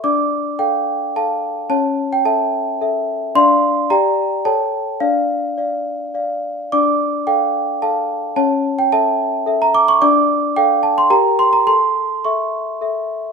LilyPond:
\new Staff \with { instrumentName = "Celesta" } { \time 3/4 \key d \minor \tempo 4 = 108 << { d'''4 g''4 a''4 | a''8. g''16 a''4. r8 | c'''4 bes''4 a''4 | f''2 r4 |
d'''4 g''4 a''4 | a''8. g''16 a''4~ a''16 bes''16 d'''16 cis'''16 | d'''4 g''8 a''16 c'''16 bes''8 c'''16 bes''16 | c'''4 cis'''4. r8 | } \\ { <d' d''>4 <a' f''>4 <a' f''>4 | <cis' cis''>4 <a' e''>4 <a' e''>4 | <d' d'' f''>4 <g' d'' g''>4 <a' cis'' g''>4 | <d' d''>4 <d'' f''>4 <d'' f''>4 |
<d' d''>4 <a' f''>4 <a' f''>4 | <cis' cis''>4 <a' e''>4 <a' e''>4 | <d' d''>4 <a' f''>4 <g' bes' g''>4 | <a' a''>4 <a' e''>4 <a' e''>4 | } >> }